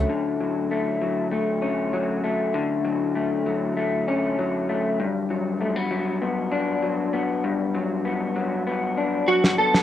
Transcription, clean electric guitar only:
Already playing: F#3 A3 C#4
0.09 D3
0.41 F#3
0.71 A3
1.01 F#3
1.31 A3
1.62 C#4
1.93 F#3
2.24 A3
2.54 D3
2.85 F#3
3.15 A3
3.46 F#3
3.77 A3
4.08 C#4
4.39 F#3
4.69 A3
5.00 G2
5.30 F#3
5.61 A3
5.76 B3
5.91 F#3
6.22 B3
6.52 D4
6.82 F#3
7.13 B3
7.44 G2
7.75 F#3
8.05 B3
8.36 F#3
8.67 B3
8.97 D4
9.28 F#3
9.59 B3

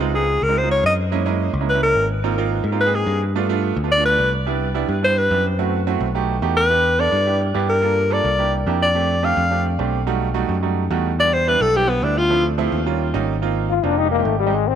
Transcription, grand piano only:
0.00 D#4 F4
0.14 G#3 C4 D#4 F4
0.49 G#3 C4 D#4 F4
0.63 G#3 C4 D#4 F4
1.12 G#3 A#3 C#4 E4
1.26 G#3 A#3 C#4 E4
1.61 G#3 A#3 C#4 E4
1.74 G#3 A#3 C#4 E4
2.24 A#3 C4 D#4 F4
2.38 A#3 C4 D#4 F4
2.72 A#3 C4 D#4 F4
2.86 A#3 C4 D#4 G#4
3.35 A3 B3 D4 F4
3.49 A3 B3 D4 F4
3.83 A3 B3 D4 F4
3.98 A3 B3 D4 F4
4.46 G3 B3 D4 E4
4.74 G3 B3 D4 E4
5.03 G3 B3 D4 E4
5.31 G3 B3 D4 E4
5.59 A3 C4 E4 F#4
5.87 A3 C4 E4 F#4
6.15 A3 D#4 F#4 G4
6.42 A3 D#4 F#4 G4
6.70 B3 D4 E4 G4
6.99 B3 D4 E4 A4
7.26 B3 D4 E4 G4
7.54 B3 D4 E4 G4
7.82 A#3 D4 F4 A4
8.10 A#3 D4 F4 A4
8.38 A#3 D4 E4 G4
8.67 A#3 D4 E4 G4
8.95 A3 C4 D4 G4
9.23 A3 C4 D4 G4
9.51 A3 C4 D4 G4
9.79 A3 C4 D4 G4
10.07 G3 A3 D#4 F#4
10.34 G3 A3 D#4 F#4
10.63 G3 A3 D#4 F#4
10.91 G3 A3 D#4 F#4
11.19 G3 B3 D4 E4
11.47 G3 B3 D4 E4
11.75 G3 B3 D4 E4
12.03 G3 B3 D4 E4
12.30 F3 A3 C4 E4
12.58 F3 A3 C4 E4
12.86 G3 A#3 C#4 F4
13.14 G3 A#3 C#4 D#4
13.42 A#3 C4 D#4 F4
13.83 A#3 C4 D#4 F4
13.91 A#3 C4 D#4 F4
13.98 G#3 C4 D#4 G4
14.05 G#3 C4 D#4 G4
14.18 G#3 C4 D#4 G4
14.46 G#3 C4 D#4 G4

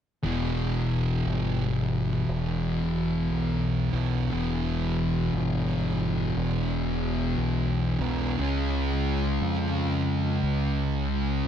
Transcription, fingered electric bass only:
0.24 E1
1.27 G1
2.29 E1
3.30 B1
3.93 B1
4.33 E1
5.34 G1
6.36 E1
7.37 B1
8.00 B1
8.39 C#2
9.41 F2
10.43 C#2

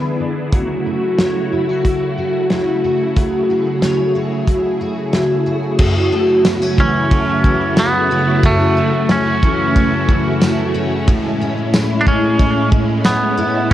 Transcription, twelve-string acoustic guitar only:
Already playing: E3 B3 D4 G#4
0.20 D4
0.53 F#3
0.86 F#4
1.19 C#5
1.52 E4
1.69 F#4
1.85 E4
2.18 F#4
2.50 E4
2.84 F#4
3.16 F#3
3.50 F#4
3.82 C#5
4.15 F#4
4.48 E4
4.81 F#4
5.14 E4
5.46 F#4
5.79 F#2
6.12 A3
6.45 B3
6.62 C#4
6.79 E3
7.11 A3
7.45 E3
7.78 A3
8.11 C#4
8.44 F#2
8.77 A3
9.10 C#4
9.43 E3
9.76 A3
10.09 E3
10.42 A3
10.74 C#4
11.08 A2
11.41 C#4
11.74 E4
12.07 G#3
12.40 C#4
12.72 G#3
13.05 C#4
13.38 E4

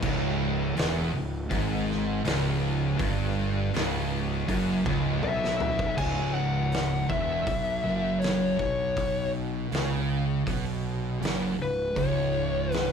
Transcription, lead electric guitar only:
5.24 E5
5.98 G#5
6.34 F#5
7.09 E5
8.20 C#5
8.59 C#5
11.62 B4
11.99 C#5
12.73 B4

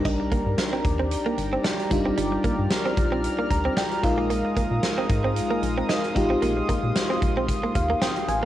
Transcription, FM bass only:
Already playing: G1
0.46 G2
0.85 D#2
1.38 G1
1.91 F#1
2.18 G1
2.59 G2
2.97 A#1
3.50 D2
4.04 A#1
4.71 A#2
5.10 G#2
5.63 A#1
6.16 A1
6.42 A#1
6.83 A#2
7.22 A#1
7.75 D#2
8.28 A1

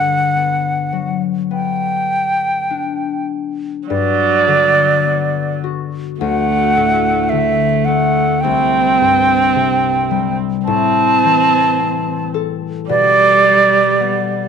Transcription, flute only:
Already playing: F#5
1.52 G5
3.88 D5
6.21 F#5
7.29 E5
7.85 F#5
8.41 G5
10.65 A5
12.89 D5

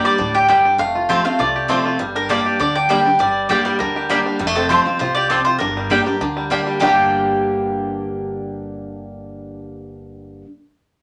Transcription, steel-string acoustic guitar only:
Already playing: G2 G3 A#3 D4 G4
0.18 A2
0.48 G2
0.78 F2
1.09 F3 A3 C4 F4
1.24 C4 F4
1.39 C3
1.68 F3 A3 C4 F4
1.99 G2
2.29 G3 A#3 D4 G4
2.60 D3
2.89 G3 A#3 D4 G4
3.05 D4 G4
3.19 G2
3.49 G3 A#3 D4 G4
3.80 D3
4.09 G3 A#3 D4 G4
4.39 F2
4.69 F3 A3 C4 F4
4.86 C4 F4
5.00 C3
5.30 F2
5.60 G2
5.90 G3 A#3 D4 G4
6.06 D4 G4
6.21 D3
6.50 G3 A#3 D4 G4
6.80 G2 D3 G3 A#3 D4 G4

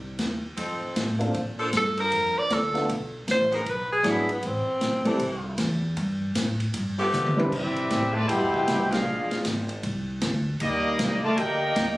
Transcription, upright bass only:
Already playing: C2
0.19 D#2
0.57 F2
0.81 muted upright bass stroke
0.96 A2
1.34 A#2
1.73 G2
2.12 F2
2.36 muted upright bass stroke
2.51 D2
2.89 B1
3.28 A1
3.66 B1
4.04 G#1
4.43 A1
4.66 muted upright bass stroke
4.81 A#1
5.05 muted upright bass stroke
5.19 C2
5.58 E2
5.97 G2
6.35 A2
6.74 G2
7.13 D3
7.52 C3
7.91 A2
8.29 G2
8.41 E2
8.54 C2
8.68 C2
9.05 A#1
9.29 muted upright bass stroke
9.45 G#1
9.83 C2
10.22 D2
10.61 D#2
10.99 C2
11.23 muted upright bass stroke
11.38 D2
11.76 D#2

